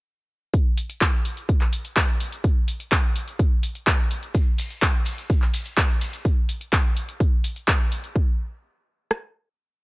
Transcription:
0.54 kick, closed hi-hat
0.77 open hi-hat
0.90 closed hi-hat
1.01 kick, clap, closed hi-hat
1.25 open hi-hat
1.37 closed hi-hat
1.49 kick, closed hi-hat
1.61 clap
1.73 open hi-hat
1.85 closed hi-hat
1.97 kick, clap, closed hi-hat
2.20 open hi-hat
2.32 closed hi-hat
2.44 kick, closed hi-hat
2.68 open hi-hat
2.80 closed hi-hat
2.92 kick, clap, closed hi-hat
3.16 open hi-hat
3.28 closed hi-hat
3.39 kick, closed hi-hat
3.63 open hi-hat
3.75 closed hi-hat
3.87 kick, clap, closed hi-hat
4.11 open hi-hat
4.23 closed hi-hat
4.34 kick, closed hi-hat, maracas
4.58 open hi-hat, maracas
4.70 closed hi-hat, maracas
4.82 kick, clap, closed hi-hat, maracas
5.05 open hi-hat, maracas
5.18 closed hi-hat, maracas
5.30 kick, closed hi-hat, maracas
5.42 clap, maracas
5.54 open hi-hat, maracas
5.66 closed hi-hat, maracas
5.77 kick, clap, closed hi-hat, maracas
5.89 maracas
6.01 open hi-hat, maracas
6.13 closed hi-hat, maracas
6.25 kick, closed hi-hat
6.49 open hi-hat
6.61 closed hi-hat
6.73 kick, clap, closed hi-hat
6.97 open hi-hat
7.09 closed hi-hat
7.20 kick, closed hi-hat
7.44 open hi-hat
7.56 closed hi-hat
7.68 kick, clap, closed hi-hat
7.92 open hi-hat
8.04 closed hi-hat
8.16 kick
9.11 cross-stick

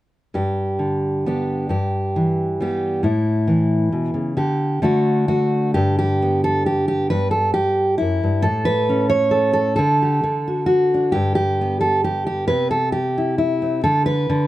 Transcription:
0.34 G2 G4
0.79 D3
1.26 B3 D4 G4
1.69 G2 G4
2.16 E3
2.61 G3 B3 G4
3.03 A2 E4
3.48 E3
3.92 B2
4.14 C#3
4.37 D3 G4
4.82 D3 A3 D4 F#4
5.28 A3 F#4
5.74 G2 G4
5.99 G4
6.22 B3
6.44 A4
6.66 G4
6.88 G4
7.10 G2 B4
7.31 A4
7.54 G4
7.98 F#2 E4
8.23 G2
8.42 A2 A4
8.65 B4
8.89 C#4
9.10 C#5
9.31 A4
9.53 A4
9.76 D3 A4
10.02 G4
10.23 D3
10.48 F#4
10.66 F#4
10.94 D4
11.12 G2 G4
11.35 G4
11.61 B3
11.81 A4
12.04 G4
12.27 G4
12.48 C3 B4
12.71 A4
12.92 G4
13.18 E4
13.38 E4
13.62 C4
13.84 D3 A4
14.06 B4
14.30 D3

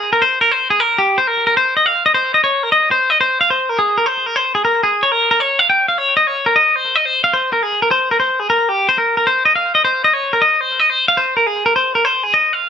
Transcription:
Already playing: G#4
0.13 A#4
0.22 C5
0.41 A#4
0.51 C5
0.70 G#4
0.80 A#4
0.98 G4
1.18 C5
1.27 A#4
1.47 A#4
1.57 C5
1.77 D#5
1.86 F5
2.06 D#5
2.14 C5
2.34 D#5
2.44 C#5
2.63 A#4
2.72 D#5
2.91 C5
3.10 D#5
3.21 C5
3.41 F5
3.50 C5
3.69 A#4
3.79 G#4
3.98 A#4
4.06 C5
4.26 A#4
4.36 C5
4.55 G#4
4.65 A#4
4.83 G#4
5.03 C#5
5.12 A#4
5.31 A#4
5.40 C#5
5.59 F5
5.70 G5
5.88 F5
5.98 C#5
6.17 D#5
6.27 C#5
6.46 A#4
6.56 D#5
6.76 C5
6.96 D#5
7.05 C5
7.24 F5
7.33 C5
7.53 A#4
7.63 G#4
7.82 A#4
7.91 C5
8.11 A#4
8.20 C5
8.40 G#4
8.50 A#4
8.69 G4
8.89 C5
8.98 A#4
9.17 A#4
9.27 C5
9.45 D#5
9.56 F5
9.75 D#5
9.85 C5
10.04 D#5
10.13 C#5
10.33 A#4
10.42 D#5
10.61 C5
10.80 D#5
10.90 C5
11.08 F5
11.17 C5
11.37 A#4
11.47 G#4
11.66 A#4
11.76 C5
11.95 A#4
12.05 C5
12.23 G#4
12.34 D#5
12.53 F5

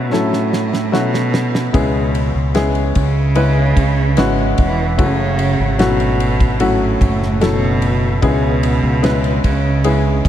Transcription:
Already playing: B2 F#3 A3 C#4 E4 F#4
0.12 A2 F#3 A3 C#4 E4 A4, snare
0.33 snare
0.53 snare
0.73 snare
0.92 B2 F#3 A3 C#4 E4 F#4, snare
1.14 snare
1.34 snare
1.55 snare
1.73 C#2 B2 C#3 G#3 B3 C#4 E4 G#4, kick, ride
2.15 ride
2.35 C#2
2.54 G#3 B3 C#4 E4 G#4, snare, ride
2.75 ride
2.95 C#2 C#3, kick, ride
3.35 G#3 B3 C#4 E4 B4, ride
3.77 C#2, kick, ride
4.17 G#1 G#3 B3 C#4 E4 F#4, snare, ride
4.58 E1 E3, kick, ride
4.98 F#1 C#3 F#3 A3 C#4 E4 F#4, kick, ride
5.39 ride
5.60 G#1
5.78 B2 F#3 A3 C#4 E4 F#4, snare, ride
6.00 ride
6.20 ride
6.40 kick, ride
6.60 A2 F#3 A3 C#4 E4 F#4, ride
7.01 F#1, kick, ride
7.23 snare
7.41 B2 F#3 A3 C#4 E4 A4, snare, ride
7.82 ride
8.22 C#2 B2 C#3 G#3 B3 C#4 E4 G#4, kick, ride
8.63 ride
8.83 C#2
9.02 G#3 B3 C#4 E4 B4, snare, ride
9.24 ride
9.44 C#2 C#3, kick, ride
9.84 G#3 B3 C#4 E4 G#4, ride
10.25 C#2, kick, ride

